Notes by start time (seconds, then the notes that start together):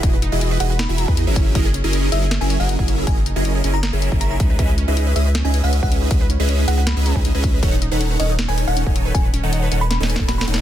0.03 E1 E3 D#4 E4 F#4 G#4 D#5, kick, closed hi-hat
0.13 B4
0.22 D#4, closed hi-hat
0.32 E1 E3 E4 F#4 G#4 D#5
0.41 E4, closed hi-hat
0.51 B4
0.60 E1 E3 D#4 E4 F#4 G#4 D#5 F#5, closed hi-hat
0.70 B4 F#5
0.79 D#4 B5, snare, closed hi-hat
0.89 E1 E3 E4 F#4 G#4 E5
0.98 E4, closed hi-hat
1.08 E2 E3 E4 F#4 G#4 B4 D#5, kick
1.17 D#4, closed hi-hat
1.27 F#1 F#3 C#4 E4 G#4 A#4 B4 E5
1.36 C#4, kick, closed hi-hat
1.46 D#4
1.55 F#1 F#3 C#4 D#4 E4 G#4 A#4 D#5, kick, closed hi-hat
1.65 G#4
1.74 C#4, closed hi-hat
1.84 F#1 F#3 C#4 E4 G#4 A#4 D#5
1.93 C#4, closed hi-hat
2.03 D#4
2.12 F#1 F#3 C#4 D#4 E4 G#4 A#4 D#5 E5, closed hi-hat
2.22 G#4
2.31 C#4, snare, closed hi-hat
2.41 F#1 F#3 C#4 E4 G#4 A#4 E5 G#5
2.50 C#4, closed hi-hat
2.60 F#1 F#3 C#4 D#4 E4 G#4 A#4 D#5 F#5
2.69 D#4, closed hi-hat
2.79 F#1 F#3 C#4 E4 G#4 A#4 E5, kick
2.88 C#4, closed hi-hat
2.98 G#4
3.07 F#1 C#4 G#4 G#5, kick, closed hi-hat
3.17 D#4
3.26 D#4, closed hi-hat
3.36 F#1 F#3 C#4 E4 G#4 A#4 D#5
3.45 C#4, closed hi-hat
3.55 G#4
3.64 F#1 F#3 C#4 E4 G#4 A#4 D#5, closed hi-hat
3.74 D#4 A#5
3.83 D#4 A#5, snare, closed hi-hat
3.93 F#1 F#3 C#4 E4 G#4 A#4 E5
4.02 C#4, closed hi-hat
4.12 F#1 F#3 C#4 E4 G#4 A#4 E5, kick
4.21 C#4 A#5, closed hi-hat
4.31 D#4 A#5
4.40 C#2 C#4 G#4 B4 D#5 E5, kick, closed hi-hat
4.50 B4
4.59 C#2 C#4 G#4 B4 D#5 E5, kick, closed hi-hat
4.69 B4
4.78 C#4, closed hi-hat
4.88 C#2 C#4 D#4 G#4 B4 D#5 E5
4.97 D#4, closed hi-hat
5.07 B4
5.16 C#2 C#4 G#4 B4 D#5 E5, closed hi-hat
5.26 B4
5.35 C#4, snare, closed hi-hat
5.45 C#2 C#4 D#4 G#4 B4 D#5 E5 G#5
5.54 D#4, closed hi-hat
5.64 C#2 C#4 G#4 B4 D#5 E5 F#5
5.73 C#4, closed hi-hat
5.83 C#2 C#4 G#4 B4 D#5 E5 F#5, kick
5.92 C#4, closed hi-hat
6.02 D#4
6.11 C#2 C#4 D#4 G#4 E5, kick, closed hi-hat
6.21 B4
6.30 C#4, closed hi-hat
6.40 C#2 C#4 G#4 B4 D#5 E5
6.49 C#4, closed hi-hat
6.59 D#4
6.68 C#2 C#4 D#4 G#4 B4 D#5 E5 F#5, closed hi-hat
6.78 B4 F#5
6.87 C#4 B5, snare, closed hi-hat
6.97 C#2 C#4 G#4 B4 D#5 E5
7.06 C#4, closed hi-hat
7.16 C#2 C#4 D#4 G#4 B4 D#5 E5, kick
7.25 D#4, closed hi-hat
7.35 C#2 C#4 G#4 B4 D#5 E5
7.44 C#4, kick, closed hi-hat
7.54 B4
7.63 D#1 D#3 C#4 D#4 A4 C#5 F#5, kick, closed hi-hat
7.72 D#4
7.82 D#4, closed hi-hat
7.91 D#1 D#3 D#4 A4 B4 C#5 F#5
8.01 C#4, closed hi-hat
8.11 B4
8.20 D#1 D#3 C#4 D#4 A4 C#5 D#5 F#5, closed hi-hat
8.29 D#4
8.39 D#4, snare, closed hi-hat
8.48 D#1 D#3 D#4 A4 B4 C#5 G#5
8.58 C#4, closed hi-hat
8.67 D#1 D#3 D#4 A4 B4 C#5 F#5
8.77 C#4, closed hi-hat
8.86 D#1 D#3 D#4 A4 C#5 G#5, kick
8.96 D#4, closed hi-hat
9.05 B4
9.14 D#1 D#3 C#4 F#5 G#5, kick, closed hi-hat
9.24 B4
9.34 C#4, closed hi-hat
9.43 D#1 D#3 D#4 A4 C#5 F#5
9.53 D#4, closed hi-hat
9.62 B4
9.72 D#1 D#3 C#4 D#4 A4 C#5 F#5, closed hi-hat
9.81 B4 B5
9.90 C#4 B5, snare, closed hi-hat
10.00 D#1 D#3 D#4 A4 C#5 G#5, snare
10.09 B4, closed hi-hat
10.16 D#1 A4 C#5 G#5, kick, snare
10.28 F#4 B5, snare, closed hi-hat
10.38 C#4 B5, snare
10.47 D#1 D#3 D#4 A4 C#5 F#5, closed hi-hat
10.54 D#4, snare